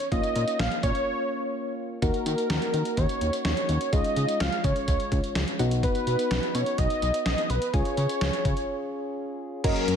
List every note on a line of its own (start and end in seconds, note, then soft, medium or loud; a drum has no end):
0.00 closed hi-hat medium
0.12 0.21 A#1 loud
0.12 1.98 A#3 medium
0.12 1.98 C#4 medium
0.12 1.98 F4 medium
0.12 0.61 D#5 loud
0.12 kick loud
0.12 closed hi-hat medium
0.23 closed hi-hat soft
0.36 0.45 A#2 loud
0.36 closed hi-hat medium
0.48 closed hi-hat medium
0.59 0.69 A#1 loud
0.59 0.83 F5 loud
0.59 snare loud
0.59 closed hi-hat medium
0.72 closed hi-hat soft
0.83 0.92 A#2 loud
0.83 1.74 C#5 loud
0.83 kick medium
0.83 closed hi-hat medium
0.95 closed hi-hat soft
2.02 2.11 D#2 loud
2.02 3.89 A#3 medium
2.02 3.89 D#4 medium
2.02 3.89 F#4 medium
2.02 2.99 A#4 loud
2.02 kick loud
2.02 closed hi-hat medium
2.14 closed hi-hat soft
2.26 2.35 D#3 loud
2.26 closed hi-hat medium
2.38 closed hi-hat medium
2.50 2.59 D#2 loud
2.50 snare loud
2.50 closed hi-hat medium
2.62 closed hi-hat soft
2.74 2.83 D#3 loud
2.74 closed hi-hat medium
2.85 closed hi-hat soft
2.97 3.07 D#2 loud
2.97 3.45 C#5 loud
2.97 kick medium
2.97 closed hi-hat medium
3.09 closed hi-hat soft
3.21 3.31 D#2 loud
3.21 closed hi-hat medium
3.33 closed hi-hat medium
3.45 3.54 D#2 loud
3.45 3.94 C#5 loud
3.45 snare loud
3.45 closed hi-hat medium
3.57 closed hi-hat soft
3.69 3.78 D#2 loud
3.69 closed hi-hat medium
3.81 closed hi-hat medium
3.93 4.02 C#2 loud
3.93 5.56 G#3 medium
3.93 5.56 C#4 medium
3.93 5.56 F4 medium
3.93 4.42 D#5 loud
3.93 kick loud
3.93 closed hi-hat medium
4.04 closed hi-hat soft
4.16 4.26 C#3 medium
4.16 closed hi-hat medium
4.28 closed hi-hat medium
4.40 4.50 C#2 loud
4.40 4.66 F5 loud
4.40 snare loud
4.40 closed hi-hat medium
4.52 closed hi-hat soft
4.64 4.73 C#3 loud
4.64 5.59 C#5 loud
4.64 kick medium
4.64 closed hi-hat medium
4.76 closed hi-hat soft
4.88 4.97 C#2 loud
4.88 kick medium
4.88 closed hi-hat medium
5.00 closed hi-hat medium
5.12 5.21 C#2 loud
5.12 kick medium
5.12 closed hi-hat medium
5.24 closed hi-hat medium
5.35 5.45 C#2 loud
5.35 snare loud
5.35 closed hi-hat medium
5.48 closed hi-hat soft
5.59 5.87 B1 loud
5.59 7.46 B3 medium
5.59 7.46 D#4 medium
5.59 7.46 F#4 medium
5.59 closed hi-hat medium
5.71 closed hi-hat medium
5.83 6.56 B4 loud
5.83 kick loud
5.83 closed hi-hat medium
5.95 closed hi-hat soft
6.07 6.16 B2 loud
6.07 closed hi-hat medium
6.19 closed hi-hat medium
6.31 6.40 B1 loud
6.31 snare loud
6.31 closed hi-hat medium
6.43 closed hi-hat soft
6.55 6.64 B2 loud
6.55 6.80 C#5 loud
6.55 closed hi-hat medium
6.66 closed hi-hat soft
6.78 6.88 B1 loud
6.78 7.25 D#5 loud
6.78 kick medium
6.78 closed hi-hat medium
6.90 closed hi-hat soft
7.02 7.11 B1 loud
7.02 closed hi-hat medium
7.14 closed hi-hat medium
7.26 7.35 B1 loud
7.26 7.51 D#5 loud
7.26 snare loud
7.26 closed hi-hat medium
7.38 closed hi-hat soft
7.50 7.59 B1 loud
7.50 7.75 B4 medium
7.50 closed hi-hat medium
7.62 closed hi-hat medium
7.74 7.83 C#2 medium
7.74 9.60 C#4 medium
7.74 9.60 F4 medium
7.74 9.60 G#4 medium
7.74 9.40 C#5 loud
7.74 kick loud
7.74 closed hi-hat medium
7.85 closed hi-hat soft
7.97 8.07 C#3 loud
7.97 closed hi-hat medium
8.09 closed hi-hat medium
8.21 8.30 C#2 loud
8.21 snare loud
8.21 closed hi-hat medium
8.33 closed hi-hat soft
8.45 8.54 C#3 medium
8.45 kick medium
8.45 closed hi-hat medium
8.57 closed hi-hat soft
9.64 9.73 F#1 loud
9.64 9.96 F#3 medium
9.64 9.96 C#4 medium
9.64 9.96 F#4 medium
9.64 9.96 G#4 medium
9.64 9.96 A#4 medium
9.64 9.96 A#4 loud
9.64 9.74 D#5 loud
9.64 kick loud
9.64 closed hi-hat medium
9.64 crash loud
9.76 closed hi-hat soft
9.88 9.96 F#2 loud
9.88 closed hi-hat medium